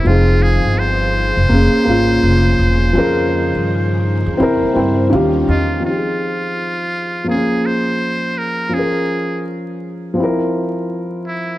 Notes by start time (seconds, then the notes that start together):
Already playing: C4
0.04 F1 D#3 F3 C4 D#4 F4 G#4
0.09 G#4
0.43 G#4
0.65 G1
0.79 C5
1.37 F1
1.49 F1 C#3 A#3 C#4
1.54 G#4
1.85 G#1 A#3 C#4
1.90 F4
2.23 F1
2.59 E1
2.93 F2 D#3 F3 A#3 C#4 D#4 G#4
2.98 A#4
3.55 G2
4.26 F2
4.37 F2 G3 C4 E4
4.42 A#4
4.63 muted upright bass stroke
4.74 G2 C4 E4 G5
4.79 C5
5.10 D#2 D#3 C#4 F4 F5
5.15 G4
5.48 E2 F4 D#5
5.80 F3 C4
5.85 D#4 F4
5.89 G4
5.96 G#4
7.24 F3 A#3
7.29 C#4 G#4
7.34 G#4
7.66 C5
8.38 A#4
8.69 F3 C#4
8.74 G#4
8.79 A#4
10.14 F3 C4
10.20 E4 A#4
11.27 E4